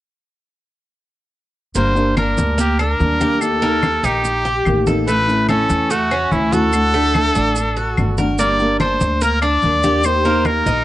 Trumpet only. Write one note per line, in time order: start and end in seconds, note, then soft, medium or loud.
1.77 2.15 C5 medium
2.18 2.56 A#4 medium
2.60 2.78 G4 medium
2.80 3.43 A#4 medium
3.41 4.06 A4 medium
4.05 4.87 G4 medium
5.07 5.46 B4 loud
5.49 5.92 A4 medium
5.91 6.33 F#4 medium
6.32 6.54 E4 medium
6.53 8.18 A4 loud
8.39 8.78 D5 loud
8.80 9.24 C5 medium
9.22 9.41 A#4 medium
9.42 10.07 D5 loud
10.05 10.47 C5 loud
10.46 10.84 A#4 medium